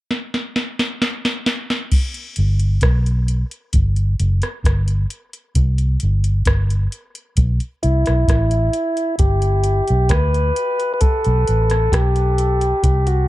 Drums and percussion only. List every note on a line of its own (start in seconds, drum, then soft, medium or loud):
0.11 snare medium
0.34 snare medium
0.56 snare medium
0.79 snare medium
1.02 snare medium
1.25 snare medium
1.46 snare loud
1.70 snare medium
1.92 kick loud
1.92 crash medium
2.14 closed hi-hat soft
2.36 closed hi-hat medium
2.60 closed hi-hat medium
2.81 kick loud
2.81 cross-stick loud
2.81 closed hi-hat medium
3.06 closed hi-hat soft
3.28 closed hi-hat medium
3.51 closed hi-hat medium
3.73 kick medium
3.73 closed hi-hat medium
3.96 closed hi-hat soft
4.20 closed hi-hat medium
4.42 cross-stick medium
4.42 closed hi-hat soft
4.64 kick medium
4.64 cross-stick medium
4.64 closed hi-hat medium
4.88 closed hi-hat medium
5.10 closed hi-hat medium
5.33 closed hi-hat medium
5.55 kick loud
5.55 closed hi-hat medium
5.78 closed hi-hat medium
6.00 closed hi-hat medium
6.24 closed hi-hat medium
6.45 kick loud
6.45 cross-stick loud
6.45 closed hi-hat medium
6.70 closed hi-hat soft
6.92 closed hi-hat medium
7.15 closed hi-hat medium
7.37 kick loud
7.37 closed hi-hat medium
7.60 closed hi-hat soft
7.83 closed hi-hat medium
8.06 cross-stick medium
8.06 closed hi-hat medium
8.28 kick loud
8.28 cross-stick medium
8.28 closed hi-hat medium
8.51 closed hi-hat medium
8.73 closed hi-hat medium
8.97 closed hi-hat soft
9.19 kick loud
9.19 closed hi-hat medium
9.42 closed hi-hat soft
9.64 closed hi-hat medium
9.88 closed hi-hat medium
10.09 kick loud
10.09 cross-stick loud
10.09 closed hi-hat medium
10.34 closed hi-hat soft
10.56 closed hi-hat medium
10.80 closed hi-hat soft
11.01 kick loud
11.01 closed hi-hat medium
11.24 closed hi-hat soft
11.48 closed hi-hat medium
11.70 cross-stick medium
11.70 closed hi-hat medium
11.92 kick medium
11.92 cross-stick medium
11.92 closed hi-hat medium
12.16 closed hi-hat soft
12.38 closed hi-hat medium
12.61 closed hi-hat medium
12.83 kick loud
12.83 closed hi-hat medium
13.07 closed hi-hat medium